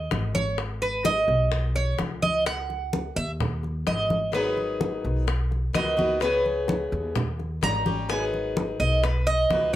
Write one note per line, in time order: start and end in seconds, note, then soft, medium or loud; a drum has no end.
0.00 0.31 D#5 medium
0.11 1.22 G#1 medium
0.11 high bongo medium
0.11 low bongo medium
0.11 high conga medium
0.35 0.57 C#5 medium
0.35 high bongo soft
0.35 high conga medium
0.58 high bongo medium
0.58 high conga soft
0.82 1.05 B4 medium
0.82 high bongo soft
0.82 high conga soft
1.05 1.72 D#5 loud
1.05 high bongo medium
1.05 high conga medium
1.28 1.95 B1 loud
1.28 high bongo soft
1.28 high conga soft
1.52 high bongo medium
1.52 high conga soft
1.75 1.98 C#5 loud
1.75 high bongo soft
1.75 high conga soft
1.99 3.10 C#2 medium
1.99 high bongo medium
1.99 low bongo medium
1.99 high conga medium
2.22 2.45 D#5 loud
2.22 high conga medium
2.46 3.13 F#5 medium
2.46 high bongo medium
2.46 high conga soft
2.70 high bongo soft
2.70 high conga soft
2.93 high bongo medium
2.93 high conga medium
3.16 3.83 D#2 loud
3.16 3.31 E5 loud
3.16 high conga soft
3.40 high bongo medium
3.40 high conga soft
3.40 low conga medium
3.63 high bongo soft
3.63 high conga soft
3.87 4.98 G#1 medium
3.87 4.31 D#5 medium
3.87 high bongo medium
3.87 low bongo medium
3.87 high conga medium
4.10 high bongo soft
4.10 high conga medium
4.32 5.26 D#3 medium
4.32 5.26 F#3 medium
4.32 5.27 B3 medium
4.32 5.27 D#4 medium
4.32 5.28 G#4 medium
4.32 4.57 B4 medium
4.32 high bongo medium
4.32 high conga soft
4.57 high bongo soft
4.57 high conga soft
4.81 high bongo medium
4.81 high conga medium
5.04 5.71 B1 loud
5.04 high bongo soft
5.04 high conga soft
5.27 muted steel-string acoustic guitar stroke medium
5.27 high bongo medium
5.27 high conga soft
5.51 high bongo soft
5.51 high conga soft
5.73 6.86 C#2 medium
5.73 5.97 D#3 medium
5.73 5.97 A#3 medium
5.73 5.96 B3 medium
5.73 5.95 F#4 medium
5.73 6.19 D#5 medium
5.73 high bongo medium
5.73 low bongo medium
5.73 high conga medium
5.97 6.21 D#3 medium
5.97 6.21 A#3 medium
5.97 6.20 B3 medium
5.97 6.20 F#4 medium
5.97 high conga medium
6.20 7.14 C#3 medium
6.20 7.15 E3 medium
6.20 7.15 B3 medium
6.20 7.15 C#4 medium
6.20 7.16 G#4 medium
6.20 6.45 B4 medium
6.20 high bongo medium
6.20 high conga soft
6.45 high bongo soft
6.45 high conga soft
6.68 high bongo medium
6.68 high conga medium
6.92 7.59 D#2 loud
6.92 high conga soft
7.16 muted steel-string acoustic guitar stroke medium
7.16 high bongo medium
7.16 high conga soft
7.16 low conga medium
7.39 high bongo soft
7.39 high conga soft
7.61 8.74 G#1 loud
7.61 7.85 D#3 medium
7.61 7.85 G3 medium
7.61 7.86 C#4 medium
7.61 7.84 G4 medium
7.61 8.07 A#5 loud
7.61 high bongo medium
7.61 low bongo medium
7.61 high conga medium
7.86 8.10 G3 medium
7.86 8.09 C#4 medium
7.86 8.09 G4 medium
7.86 high bongo soft
7.86 high conga medium
8.09 9.02 D#3 medium
8.09 9.03 F#3 medium
8.09 9.03 B3 medium
8.09 9.04 D#4 medium
8.09 9.04 G#4 medium
8.09 8.24 G#5 medium
8.09 high bongo medium
8.09 high conga soft
8.33 high bongo soft
8.33 high conga soft
8.57 high bongo medium
8.57 high conga medium
8.80 9.46 B1 loud
8.80 9.03 D#5 loud
8.80 high bongo soft
8.80 high conga soft
9.03 9.26 B4 medium
9.03 muted steel-string acoustic guitar stroke medium
9.03 high bongo medium
9.03 high conga soft
9.27 9.71 D#5 loud
9.27 high bongo soft
9.27 high conga soft
9.50 9.76 C#2 medium
9.50 9.73 D#3 medium
9.50 9.73 A#3 medium
9.50 9.73 B3 medium
9.50 9.72 F#4 medium
9.50 high bongo medium
9.50 low bongo medium
9.50 high conga medium